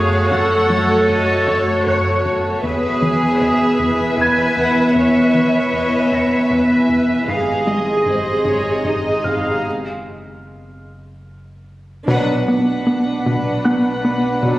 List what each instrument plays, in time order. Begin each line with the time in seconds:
Already playing: sub bass F#1, analog synth bass F#2, double bass section F#2, viola section A3 F#4, ambient pad F#4 C#5, cello section G#4, violin section C#5 F5, felt piano G#6
0.30 analog synth bass F#2, cello section A4, violin section F#5
0.70 analog synth bass F#3
1.08 analog synth bass F#2, violin section D#5
1.47 analog synth bass F#2, violin section C#5
1.87 analog synth bass F#2, violin section A4, cello section C#5, felt piano F#6
2.25 analog synth bass F#2
2.63 sub bass E1, double bass section E2, analog synth bass E2, viola section B3 B4, ambient pad E4 B4 G#5, cello section G#4, violin section B4 E5
3.02 analog synth bass E3
3.41 analog synth bass E2, violin section E5
3.79 analog synth bass E2
4.17 analog synth bass E2, cello section B4, violin section G#5, felt piano G#6
4.57 analog synth bass E2, violin section F#5
4.95 analog synth bass E2, cello section C#5, violin section E5
5.34 analog synth bass E3
5.73 analog synth bass E2, violin section D#5
6.12 analog synth bass E2, violin section E5, felt piano A#6
6.49 analog synth bass E2, cello section B4
6.89 analog synth bass E2
7.27 double bass section G#1, sub bass G#1, analog synth bass G#2, viola section C3 G#4, ambient pad G#4 D#5 C6, cello section G#4, violin section D#5 F5, felt piano C7
7.67 analog synth bass G#3, violin section D#5
8.06 analog synth bass G#2, violin section C5
8.45 analog synth bass G#2, violin section C#5
8.84 analog synth bass G#2, cello section D#4, violin section D#5
9.24 analog synth bass G#2, violin section F5, felt piano F6
9.64 sub bass F#1
12.06 sub bass B1, double bass section B1, analog synth bass B2, trombone section B2 F#3, cello section B2, viola section D4, french horn section D4 B4, ambient pad B4 D5 F#5, violin section B4 F#5
12.48 analog synth bass B3
12.87 analog synth bass B3
13.26 analog synth bass B2
13.65 analog synth bass B3, felt piano F#6
14.05 analog synth bass B3
14.42 analog synth bass B2, trombone section B2 F#3, french horn section D4 B4